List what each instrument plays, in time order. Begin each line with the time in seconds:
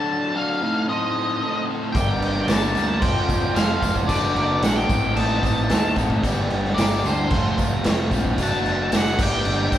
Already playing: overdriven electric guitar F#3 D4 F#4 A4, lead electric guitar A5
0.34 overdriven electric guitar F#3 D4 F#4 A4, lead electric guitar F5
0.62 overdriven electric guitar A2 A3 C4 D#4 A4
0.89 overdriven electric guitar A2 A3 C4 D#4 A4, lead electric guitar D#5, glockenspiel C6
1.43 overdriven electric guitar A2 A3 C4 D#4 A4
1.70 overdriven electric guitar A2 A3 C4 D#4 A4
1.92 fingered electric bass G1, overdriven electric guitar G2 D3, lead electric guitar G5, glockenspiel D6, kick, tambourine, crash
1.97 overdriven electric guitar G3 A#3 D4 A#4
2.21 fingered electric bass G1, crash
2.47 fingered electric bass G1, overdriven electric guitar G2 D3 G3 A#3 D4, lead electric guitar A5, glockenspiel D6, snare, tambourine, crash
2.51 overdriven electric guitar A#4
2.75 fingered electric bass D2, overdriven electric guitar G2 D3 G3 A#3 D4 A#4, tambourine, crash
3.00 fingered electric bass F1, overdriven electric guitar F3 C4 F4 A4, lead electric guitar G5, glockenspiel C6, kick, tambourine, crash
3.29 fingered electric bass F1, kick, tambourine, crash
3.56 fingered electric bass F1, overdriven electric guitar F3 C4 F4 A4, lead electric guitar F5, glockenspiel C6, snare, tambourine, crash
3.82 fingered electric bass F1, overdriven electric guitar F3 C4 F4 A4, kick, tambourine, crash
3.96 kick
4.07 fingered electric bass F#1, overdriven electric guitar F#3 D4, lead electric guitar D5, glockenspiel A5, kick, tambourine, crash
4.11 overdriven electric guitar F#4 A4
4.35 fingered electric bass F#1, lead electric guitar D5, glockenspiel A#5, crash
4.62 fingered electric bass A#1, overdriven electric guitar F#3 D4 F#4 A4, lead electric guitar F#5, glockenspiel D6, snare, tambourine, crash
4.76 lead electric guitar G5, glockenspiel D#6
4.89 fingered electric bass A1, overdriven electric guitar A2 A3 C4 D#4 A4, kick, tambourine, crash
5.16 fingered electric bass A1, overdriven electric guitar A2 A3 C4 D#4 A4, lead electric guitar A5, glockenspiel D#6, tambourine, crash
5.43 fingered electric bass A1, lead electric guitar A5, glockenspiel D#6, kick, tambourine, crash
5.69 fingered electric bass D#2, overdriven electric guitar A2 A3 C4 D#4 A4, snare, tambourine, crash
5.96 fingered electric bass A1, overdriven electric guitar A2 A3 C4 D#4 A4, kick, tambourine, crash
6.10 kick
6.23 fingered electric bass G1, overdriven electric guitar G2 D3 G3 A#3 D4 G4, kick, tambourine, crash
6.50 fingered electric bass G1, crash
6.65 snare
6.75 fingered electric bass G1, lead electric guitar D5, tambourine, crash
6.79 overdriven electric guitar G2 D3 G3 A#3 D4 G4, glockenspiel A#5, snare
7.04 fingered electric bass D2, overdriven electric guitar G2 D3 G3 A#3 D4 G4, lead electric guitar C5, glockenspiel A5, tambourine, crash
7.30 fingered electric bass F1, overdriven electric guitar F2 C3 F3 A3 C4, kick, tambourine, crash
7.35 overdriven electric guitar F4
7.58 fingered electric bass F1, kick, tambourine, crash
7.84 fingered electric bass F1, overdriven electric guitar F2 C3 F3 A3 C4, snare, tambourine, crash
7.88 overdriven electric guitar F4
8.11 fingered electric bass A#1, overdriven electric guitar F2 C3 F3 A3 C4 F4, kick, tambourine, crash
8.25 kick
8.38 fingered electric bass F#1, overdriven electric guitar F#3 A3 D4 F#4, kick, tambourine, crash
8.43 lead electric guitar A5, glockenspiel F#6
8.64 fingered electric bass F#1, tambourine, crash
8.92 fingered electric bass F#1, overdriven electric guitar F#3 A3 D4 F#4, glockenspiel D6, snare, tambourine, crash
8.96 lead electric guitar F#5
9.18 fingered electric bass G1, overdriven electric guitar G2 D3 G3 A#3 D4 G4, glockenspiel D6, kick, tambourine, crash
9.23 lead electric guitar G5
9.45 fingered electric bass G1, overdriven electric guitar G2 D3 G3 A#3 D4 G4, crash
9.72 fingered electric bass G1, kick, tambourine, crash